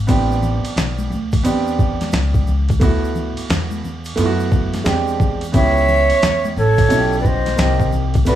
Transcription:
0.07 upright bass A1, upright piano B3 C4 D4 G4, kick, ride, shaker
0.32 shaker
0.43 low conga, shaker
0.65 muted upright bass stroke, ride, shaker
0.76 upright bass B1, snare, hi-hat pedal, ride, high conga, shaker
0.99 high conga, shaker
1.10 upright bass D2, low conga, shaker
1.32 kick, ride, shaker
1.43 upright bass E2, upright piano B3 C4 D4 G4, ride, shaker
1.67 shaker
1.79 kick, shaker
2.01 snare, ride, high conga, shaker
2.12 upright bass C#2, snare, hi-hat pedal, ride, shaker
2.34 kick, shaker
2.47 low conga, shaker
2.69 kick, ride, shaker
2.80 upright bass D2, upright piano A3 B3 E4 F#4, kick, ride, shaker
3.04 shaker
3.15 low conga, shaker
3.37 muted upright bass stroke, ride, shaker
3.49 upright bass E2, snare, hi-hat pedal, ride, high conga, shaker
3.71 high conga, shaker
3.84 low conga, shaker
4.05 ride, shaker
4.16 upright bass F#2, upright piano A3 B3 E4 F4, ride, shaker
4.26 upright piano F#4
4.40 shaker
4.51 kick, shaker
4.74 snare, ride, high conga, shaker
4.84 upright bass E2, upright piano G#3 C4 D4 G4, snare, hi-hat pedal, ride, shaker
5.08 shaker
5.20 kick, low conga, shaker
5.41 ride, shaker
5.52 upright bass C#2, upright piano B3 C#4 E4 G4, flute E5, kick, ride, shaker
5.56 flugelhorn C#5
5.77 shaker
5.88 low conga, shaker
6.10 muted upright bass stroke, ride, shaker
6.22 upright bass E2, snare, hi-hat pedal, ride, high conga, shaker
6.45 high conga, shaker
6.56 upright bass A1, flugelhorn A4, flute C#5, low conga, shaker
6.77 kick, ride, shaker
6.88 upright bass B1, upright piano B2 C#4 E4 F#4, ride, shaker
6.98 upright piano G4
7.13 shaker
7.19 flugelhorn B4, flute D5
7.24 flugelhorn C5, flute D#5, kick, shaker
7.46 snare, ride, high conga, shaker
7.57 upright bass C2, upright piano A#3 C4 D#4 G4, snare, hi-hat pedal, ride, shaker
7.80 kick, shaker
7.92 low conga, shaker
8.14 kick, ride, shaker
8.25 upright bass B1, upright piano A3 B3 D4 F#4, flugelhorn B4, flute D5, ride, shaker

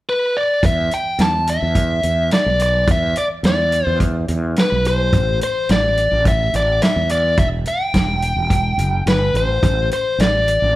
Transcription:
0.09 lead electric guitar B4
0.37 lead electric guitar D5
0.63 fretless electric bass E2, lead electric guitar E5, kick, closed hi-hat
0.91 lead electric guitar G5, closed hi-hat
1.19 fretless electric bass E2, lead electric guitar A5, snare, closed hi-hat
1.47 lead electric guitar E5, closed hi-hat
1.63 fretless electric bass E2
1.75 kick, closed hi-hat
2.03 fretless electric bass E2, closed hi-hat
2.31 lead electric guitar D5, snare, closed hi-hat
2.46 fretless electric bass B1
2.59 lead electric guitar D5, closed hi-hat
2.87 fretless electric bass E2, lead electric guitar E5, kick, closed hi-hat
3.16 lead electric guitar D5, closed hi-hat
3.43 fretless electric bass E2, lead electric guitar D5, snare, closed hi-hat
3.72 closed hi-hat
3.86 fretless electric bass E2, lead electric guitar C5
4.00 kick, closed hi-hat
4.28 fretless electric bass E2, closed hi-hat
4.56 lead electric guitar B4, snare, closed hi-hat
4.72 fretless electric bass B1
4.85 lead electric guitar C5, closed hi-hat
5.13 fretless electric bass A1, kick, closed hi-hat
5.41 lead electric guitar C5, closed hi-hat
5.69 fretless electric bass A1, lead electric guitar D5, snare, closed hi-hat
5.97 closed hi-hat
6.12 fretless electric bass A1
6.25 lead electric guitar E5, kick, closed hi-hat
6.53 fretless electric bass A1, lead electric guitar D5, closed hi-hat
6.82 lead electric guitar E5, snare, closed hi-hat
6.96 fretless electric bass E2
7.09 lead electric guitar D5, closed hi-hat
7.37 fretless electric bass E1, lead electric guitar E5, kick, closed hi-hat
7.65 lead electric guitar G5, closed hi-hat
7.94 fretless electric bass E1, kick, snare, closed hi-hat
8.22 closed hi-hat
8.36 fretless electric bass E1
8.50 kick, closed hi-hat
8.78 fretless electric bass F#1, closed hi-hat
9.06 fretless electric bass G1, lead electric guitar B4, snare, closed hi-hat
9.34 fretless electric bass A1, lead electric guitar C5, closed hi-hat
9.63 fretless electric bass A1, kick, closed hi-hat
9.91 lead electric guitar C5, closed hi-hat
10.18 fretless electric bass A1, lead electric guitar D5, snare, closed hi-hat
10.48 closed hi-hat
10.62 fretless electric bass A1

